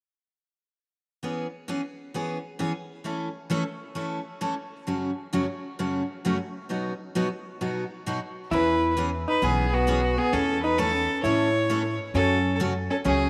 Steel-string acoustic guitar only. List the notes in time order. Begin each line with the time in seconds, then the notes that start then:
1.23 E3 B3 C#4 G#4
1.68 E3 B3 C#4 G#4
2.14 E3 B3 C#4 G#4
2.59 E3 B3 C#4 G#4
3.04 E3 A3 C#4 E4 A4
3.50 E3 A3 C#4 E4 A4
3.95 E3 A3 C#4 E4 A4
4.41 E3 A3 C#4 E4 A4
4.87 F#2 C#3 F#3 A3 C#4 F#4
5.33 F#2 C#3 F#3 A3 C#4 F#4
5.79 F#2 C#3 F#3 A3 C#4 F#4
6.25 F#2 C#3 F#3 A3 C#4 F#4
6.69 B2 F#3 B3 D#4 F#4
7.15 B2 F#3 B3 D#4 F#4
7.61 B2 F#3 B3 D#4 F#4
8.06 B2 F#3 B3 D#4 F#4
8.52 E3 B3 C#4 G#4
8.97 E3 B3 C#4 G#4
9.42 E3 B3 C#4 G#4
9.87 E3 B3 C#4 G#4
10.33 E3 A3 C#4 E4 A4
10.78 E3 A3 C#4 E4 A4
11.24 E3 A3 C#4 E4 A4
11.70 E3 A3 C#4 E4 A4
12.15 C#3 F#3 A3 C#4 F#4
12.60 C#3 F#3 A3 C#4 F#4
13.05 C#3 F#3 A3 C#4 F#4